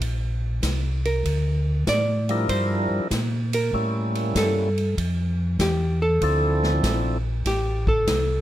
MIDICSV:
0, 0, Header, 1, 5, 480
1, 0, Start_track
1, 0, Tempo, 620476
1, 8, Time_signature, 4, 2, 24, 8
1, 6506, End_track
2, 0, Start_track
2, 0, Title_t, "Hollow-body jazz guitar"
2, 0, Program_c, 0, 26
2, 817, Note_on_c, 0, 70, 73
2, 1420, Note_off_c, 0, 70, 0
2, 1460, Note_on_c, 0, 74, 96
2, 1903, Note_off_c, 0, 74, 0
2, 1931, Note_on_c, 0, 72, 81
2, 2703, Note_off_c, 0, 72, 0
2, 2742, Note_on_c, 0, 70, 76
2, 3341, Note_off_c, 0, 70, 0
2, 3384, Note_on_c, 0, 69, 74
2, 3825, Note_off_c, 0, 69, 0
2, 4339, Note_on_c, 0, 67, 64
2, 4648, Note_off_c, 0, 67, 0
2, 4658, Note_on_c, 0, 69, 94
2, 5259, Note_off_c, 0, 69, 0
2, 5780, Note_on_c, 0, 67, 76
2, 6088, Note_off_c, 0, 67, 0
2, 6099, Note_on_c, 0, 69, 94
2, 6506, Note_off_c, 0, 69, 0
2, 6506, End_track
3, 0, Start_track
3, 0, Title_t, "Tonewheel organ"
3, 0, Program_c, 1, 16
3, 1772, Note_on_c, 1, 55, 71
3, 1776, Note_on_c, 1, 53, 63
3, 1781, Note_on_c, 1, 62, 66
3, 1784, Note_on_c, 1, 64, 68
3, 1785, Note_on_c, 1, 70, 85
3, 2377, Note_off_c, 1, 55, 0
3, 2379, Note_off_c, 1, 53, 0
3, 2381, Note_off_c, 1, 62, 0
3, 2383, Note_off_c, 1, 64, 0
3, 2383, Note_off_c, 1, 70, 0
3, 2892, Note_on_c, 1, 55, 63
3, 2894, Note_on_c, 1, 58, 55
3, 2896, Note_on_c, 1, 61, 56
3, 2899, Note_on_c, 1, 64, 57
3, 3629, Note_off_c, 1, 55, 0
3, 3630, Note_off_c, 1, 58, 0
3, 3631, Note_off_c, 1, 61, 0
3, 3633, Note_off_c, 1, 64, 0
3, 4813, Note_on_c, 1, 53, 67
3, 4817, Note_on_c, 1, 60, 57
3, 4820, Note_on_c, 1, 62, 60
3, 4820, Note_on_c, 1, 64, 58
3, 4828, Note_on_c, 1, 69, 71
3, 5550, Note_off_c, 1, 53, 0
3, 5551, Note_off_c, 1, 60, 0
3, 5553, Note_off_c, 1, 62, 0
3, 5553, Note_off_c, 1, 64, 0
3, 5557, Note_off_c, 1, 69, 0
3, 6506, End_track
4, 0, Start_track
4, 0, Title_t, "Tonewheel organ"
4, 0, Program_c, 2, 16
4, 4, Note_on_c, 2, 34, 80
4, 472, Note_off_c, 2, 34, 0
4, 486, Note_on_c, 2, 36, 87
4, 953, Note_off_c, 2, 36, 0
4, 960, Note_on_c, 2, 38, 90
4, 1430, Note_off_c, 2, 38, 0
4, 1445, Note_on_c, 2, 45, 93
4, 1912, Note_off_c, 2, 45, 0
4, 1924, Note_on_c, 2, 43, 85
4, 2228, Note_off_c, 2, 43, 0
4, 2244, Note_on_c, 2, 43, 42
4, 2324, Note_off_c, 2, 43, 0
4, 2401, Note_on_c, 2, 46, 86
4, 2870, Note_off_c, 2, 46, 0
4, 2885, Note_on_c, 2, 45, 74
4, 3352, Note_off_c, 2, 45, 0
4, 3365, Note_on_c, 2, 43, 81
4, 3832, Note_off_c, 2, 43, 0
4, 3846, Note_on_c, 2, 41, 75
4, 4312, Note_off_c, 2, 41, 0
4, 4326, Note_on_c, 2, 40, 81
4, 4792, Note_off_c, 2, 40, 0
4, 4806, Note_on_c, 2, 38, 92
4, 5272, Note_off_c, 2, 38, 0
4, 5281, Note_on_c, 2, 34, 91
4, 5750, Note_off_c, 2, 34, 0
4, 5761, Note_on_c, 2, 33, 82
4, 6229, Note_off_c, 2, 33, 0
4, 6241, Note_on_c, 2, 36, 82
4, 6506, Note_off_c, 2, 36, 0
4, 6506, End_track
5, 0, Start_track
5, 0, Title_t, "Drums"
5, 8, Note_on_c, 9, 36, 18
5, 11, Note_on_c, 9, 51, 66
5, 86, Note_off_c, 9, 36, 0
5, 89, Note_off_c, 9, 51, 0
5, 484, Note_on_c, 9, 38, 66
5, 486, Note_on_c, 9, 36, 25
5, 486, Note_on_c, 9, 44, 66
5, 486, Note_on_c, 9, 51, 72
5, 562, Note_off_c, 9, 38, 0
5, 563, Note_off_c, 9, 36, 0
5, 563, Note_off_c, 9, 44, 0
5, 563, Note_off_c, 9, 51, 0
5, 815, Note_on_c, 9, 51, 47
5, 892, Note_off_c, 9, 51, 0
5, 966, Note_on_c, 9, 36, 19
5, 971, Note_on_c, 9, 51, 64
5, 1044, Note_off_c, 9, 36, 0
5, 1048, Note_off_c, 9, 51, 0
5, 1446, Note_on_c, 9, 38, 75
5, 1447, Note_on_c, 9, 36, 21
5, 1448, Note_on_c, 9, 44, 56
5, 1448, Note_on_c, 9, 51, 67
5, 1524, Note_off_c, 9, 36, 0
5, 1524, Note_off_c, 9, 38, 0
5, 1525, Note_off_c, 9, 44, 0
5, 1525, Note_off_c, 9, 51, 0
5, 1771, Note_on_c, 9, 51, 51
5, 1849, Note_off_c, 9, 51, 0
5, 1926, Note_on_c, 9, 36, 19
5, 1927, Note_on_c, 9, 51, 70
5, 2003, Note_off_c, 9, 36, 0
5, 2005, Note_off_c, 9, 51, 0
5, 2406, Note_on_c, 9, 36, 23
5, 2406, Note_on_c, 9, 38, 64
5, 2407, Note_on_c, 9, 44, 61
5, 2407, Note_on_c, 9, 51, 71
5, 2483, Note_off_c, 9, 38, 0
5, 2484, Note_off_c, 9, 36, 0
5, 2485, Note_off_c, 9, 44, 0
5, 2485, Note_off_c, 9, 51, 0
5, 2732, Note_on_c, 9, 51, 76
5, 2809, Note_off_c, 9, 51, 0
5, 2888, Note_on_c, 9, 36, 18
5, 2965, Note_off_c, 9, 36, 0
5, 3213, Note_on_c, 9, 51, 45
5, 3290, Note_off_c, 9, 51, 0
5, 3368, Note_on_c, 9, 36, 27
5, 3368, Note_on_c, 9, 38, 77
5, 3370, Note_on_c, 9, 44, 51
5, 3370, Note_on_c, 9, 51, 80
5, 3445, Note_off_c, 9, 36, 0
5, 3446, Note_off_c, 9, 38, 0
5, 3447, Note_off_c, 9, 44, 0
5, 3447, Note_off_c, 9, 51, 0
5, 3694, Note_on_c, 9, 51, 46
5, 3772, Note_off_c, 9, 51, 0
5, 3849, Note_on_c, 9, 36, 24
5, 3852, Note_on_c, 9, 51, 70
5, 3926, Note_off_c, 9, 36, 0
5, 3929, Note_off_c, 9, 51, 0
5, 4327, Note_on_c, 9, 36, 24
5, 4327, Note_on_c, 9, 38, 76
5, 4329, Note_on_c, 9, 44, 64
5, 4329, Note_on_c, 9, 51, 69
5, 4404, Note_off_c, 9, 36, 0
5, 4405, Note_off_c, 9, 38, 0
5, 4406, Note_off_c, 9, 44, 0
5, 4406, Note_off_c, 9, 51, 0
5, 4808, Note_on_c, 9, 36, 26
5, 4808, Note_on_c, 9, 51, 63
5, 4885, Note_off_c, 9, 36, 0
5, 4886, Note_off_c, 9, 51, 0
5, 5133, Note_on_c, 9, 38, 58
5, 5210, Note_off_c, 9, 38, 0
5, 5287, Note_on_c, 9, 36, 29
5, 5288, Note_on_c, 9, 38, 75
5, 5289, Note_on_c, 9, 44, 55
5, 5289, Note_on_c, 9, 51, 74
5, 5365, Note_off_c, 9, 36, 0
5, 5365, Note_off_c, 9, 38, 0
5, 5367, Note_off_c, 9, 44, 0
5, 5367, Note_off_c, 9, 51, 0
5, 5765, Note_on_c, 9, 36, 18
5, 5766, Note_on_c, 9, 38, 39
5, 5768, Note_on_c, 9, 51, 69
5, 5842, Note_off_c, 9, 36, 0
5, 5844, Note_off_c, 9, 38, 0
5, 5845, Note_off_c, 9, 51, 0
5, 6089, Note_on_c, 9, 36, 54
5, 6167, Note_off_c, 9, 36, 0
5, 6243, Note_on_c, 9, 36, 24
5, 6245, Note_on_c, 9, 38, 77
5, 6246, Note_on_c, 9, 44, 57
5, 6246, Note_on_c, 9, 51, 78
5, 6321, Note_off_c, 9, 36, 0
5, 6322, Note_off_c, 9, 38, 0
5, 6324, Note_off_c, 9, 44, 0
5, 6324, Note_off_c, 9, 51, 0
5, 6506, End_track
0, 0, End_of_file